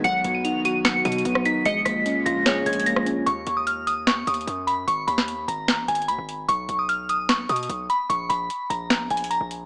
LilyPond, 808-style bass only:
\new Staff \with { instrumentName = "808-style bass" } { \clef bass \time 4/4 \key ees \minor \tempo 4 = 149 b,,8 b,,2 b,8 b,,8 r8 | bes,,8 bes,,8 r8 bes,,4 bes,,8. bes,,8. | ees,8 ees,2 ees,8 ges,4 | aes,,8 ees,4 aes,,8. bes,,16 aes,,8 ees,16 aes,,8. |
b,,8 b,,2 b,8 b,,8 r8 | bes,,8 bes,,8 r8 bes,,4 bes,,8. bes,,8. | }